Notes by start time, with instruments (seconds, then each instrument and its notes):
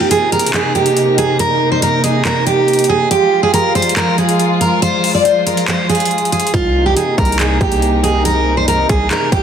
Already playing: string section C3 A#3 D#4
0.00 steel-string acoustic guitar G4
0.11 steel-string acoustic guitar G#4, closed hi-hat
0.32 steel-string acoustic guitar A#4, closed hi-hat
0.39 closed hi-hat
0.47 closed hi-hat
0.54 steel-string acoustic guitar G#4, clap, closed hi-hat
0.75 steel-string acoustic guitar G4, closed hi-hat
0.86 closed hi-hat
0.97 closed hi-hat
1.18 steel-string acoustic guitar G#4, closed hi-hat
1.39 steel-string acoustic guitar A#4, closed hi-hat
1.72 steel-string acoustic guitar C5
1.82 steel-string acoustic guitar A#4, closed hi-hat
2.04 steel-string acoustic guitar G#4, closed hi-hat
2.25 steel-string acoustic guitar A#4, clap, closed hi-hat
2.47 steel-string acoustic guitar G4, closed hi-hat
2.68 closed hi-hat
2.73 closed hi-hat
2.79 closed hi-hat
2.84 closed hi-hat
2.89 steel-string acoustic guitar G#4
3.11 string section F3 G#3 F4, steel-string acoustic guitar G4, closed hi-hat
3.43 steel-string acoustic guitar G#4
3.54 steel-string acoustic guitar A#4, closed hi-hat
3.75 steel-string acoustic guitar C5, closed hi-hat
3.82 closed hi-hat
3.89 closed hi-hat
3.96 steel-string acoustic guitar A#4, clap, closed hi-hat
4.18 steel-string acoustic guitar G#4, closed hi-hat
4.29 closed hi-hat
4.39 closed hi-hat
4.61 steel-string acoustic guitar A#4, closed hi-hat
4.82 steel-string acoustic guitar C5, closed hi-hat
5.04 open hi-hat
5.15 steel-string acoustic guitar D5
5.25 steel-string acoustic guitar C5, closed hi-hat
5.47 steel-string acoustic guitar A#4, closed hi-hat
5.57 closed hi-hat
5.68 steel-string acoustic guitar C5, clap, closed hi-hat
5.89 steel-string acoustic guitar G#4, closed hi-hat
5.95 closed hi-hat
6.00 closed hi-hat
6.05 closed hi-hat
6.11 closed hi-hat
6.18 closed hi-hat
6.25 closed hi-hat
6.32 steel-string acoustic guitar G#4, closed hi-hat
6.40 closed hi-hat
6.47 closed hi-hat
6.54 808-style bass C2, string section C3 A#3 D#4, steel-string acoustic guitar F4, kick, closed hi-hat
6.86 steel-string acoustic guitar G4
6.97 steel-string acoustic guitar G#4, closed hi-hat
7.18 808-style bass C2, steel-string acoustic guitar A#4, kick, closed hi-hat
7.25 closed hi-hat
7.32 closed hi-hat
7.39 steel-string acoustic guitar G#4, clap, closed hi-hat
7.61 808-style bass C2, steel-string acoustic guitar G4, kick, closed hi-hat
7.72 closed hi-hat
7.82 closed hi-hat
8.03 steel-string acoustic guitar G#4, closed hi-hat
8.25 steel-string acoustic guitar A#4, closed hi-hat
8.57 steel-string acoustic guitar C5
8.68 steel-string acoustic guitar A#4, closed hi-hat
8.89 808-style bass C2, steel-string acoustic guitar G#4, kick, closed hi-hat
9.11 steel-string acoustic guitar A#4, clap, closed hi-hat
9.32 808-style bass C2, steel-string acoustic guitar G4, kick, closed hi-hat